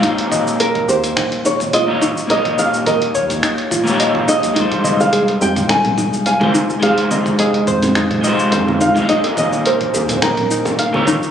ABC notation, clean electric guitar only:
X:1
M:4/4
L:1/16
Q:"Swing 16ths" 1/4=106
K:Ebmix
V:1 name="Clean electric guitar"
[B,DEFG]12- [B,DEFG] [B,EFGd]2 z | [B,EFGd]8- [B,EFGd]2 z [B,EFGd]4- [B,EFGd] | [G,A,EFc]12- [G,A,EFc] [A,EFGc]2 z | [A,EFGc]8- [A,EFGc]2 [A,EFGc]4- [A,EFGc] [A,EFGf] |
[B,DEFG]12- [B,DEFG] [B,EFGd]2 z |]